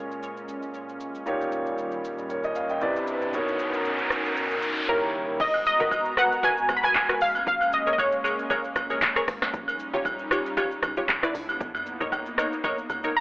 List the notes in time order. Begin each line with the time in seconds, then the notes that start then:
Already playing: A#2 G#3 A#3 C#4 F4 G#4 C#5
0.12 shaker
0.23 shaker
0.37 shaker
0.48 shaker
0.62 shaker
0.74 shaker
0.89 shaker
1.00 shaker
1.15 shaker
1.26 A#2 D#3 G3 A#3 D#4 F4 G4 C#5, riser, shaker
1.41 shaker
1.52 shaker
1.66 shaker
1.78 shaker
1.91 shaker
2.05 shaker
2.18 shaker
2.30 A#4 C#5, shaker
2.44 D#5, shaker
2.55 C#5 F5, shaker
2.69 D#5 G5, shaker
2.81 C3 C4 D4 E4 B4 D5, shaker
2.96 shaker
3.07 shaker
3.22 shaker
3.32 B2 B3 C#4 D#4 A#4 C#5, shaker
3.48 shaker
3.59 shaker
3.73 shaker
3.85 shaker
3.98 shaker
4.10 cross-stick, shaker
4.25 shaker
4.36 shaker
4.51 shaker
4.62 shaker
4.76 shaker
4.88 D#2 C#3 D#3 G3 A#3 E4 G4 A#4 C#5
5.40 G#1 G#3 B3 F#4 D#5 A#5, kick, crash, shaker
5.54 high agogo, shaker
5.66 D#5, shaker
5.80 G#1 F#4 A#4 B4, shaker
5.91 kick, high agogo, shaker
6.05 shaker
6.17 F#4 A#4 B4 F#5, cross-stick, high agogo, shaker
6.32 shaker
6.43 F#4 A#4 B4 G#5, kick, high agogo, shaker
6.57 shaker
6.69 B1, cross-stick, high agogo, shaker
6.77 B5
6.83 F#4 A#4 B4 G#5, shaker
6.95 G#1, kick, clap, high agogo, shaker
7.09 F#4 A#4 B4, cross-stick, shaker
7.21 A#1 A#3 C#4 F5, open hi-hat, shaker
7.35 high agogo, shaker
7.47 A#1 F5, kick, shaker
7.61 high agogo, shaker
7.73 D#5, shaker
7.87 G#1 G#4 A#4 C#5, shaker
7.93 D#5
7.98 C#5, kick, high agogo, shaker
8.12 shaker
8.24 G#4 A#4 C#5, high agogo, shaker
8.39 shaker
8.50 G#4 A#4 C#5, kick, high agogo, shaker
8.64 shaker
8.76 A#1, cross-stick, high agogo, shaker
8.90 G#4 A#4 C#5, shaker
9.02 kick, snare, clap, high agogo, shaker
9.16 G#4 A#4 C#5, cross-stick, shaker
9.28 G#1, cross-stick, open hi-hat, shaker
9.42 cross-stick, snare, high agogo, shaker
9.54 A#1 G3 C#4 D#4, kick, shaker
9.68 high agogo, shaker
9.79 shaker
9.93 A#1 F4 G4 C#5, shaker
10.05 kick, high agogo, shaker
10.19 shaker
10.31 F4 G4 C#5, cross-stick, high agogo, shaker
10.46 shaker
10.57 F4 G4 C#5, kick, high agogo, shaker
10.71 shaker
10.83 C#2, cross-stick, high agogo, shaker
10.97 F4 G4 C#5, shaker
11.08 C2 C3 B3 D4 E4, kick, clap, high agogo, shaker
11.23 E4 B4 D5, cross-stick, shaker
11.35 C#2, open hi-hat, shaker
11.49 high agogo, shaker
11.61 B1 A#3 D#4, kick, shaker
11.75 mid tom, high agogo, shaker
11.86 shaker
12.00 A#1 D#4 A#4 C#5, mid tom, shaker
12.12 kick, high agogo, low woodblock, shaker
12.26 shaker
12.38 D#4 A#4 C#5, cross-stick, high agogo, shaker
12.53 shaker
12.64 D#4 A#4 C#5, kick, high agogo, shaker
12.78 shaker
12.90 C#2, high agogo, shaker
13.04 D#4 A#4 C#5, shaker
13.16 D#3 C#4 E4 G4 A#5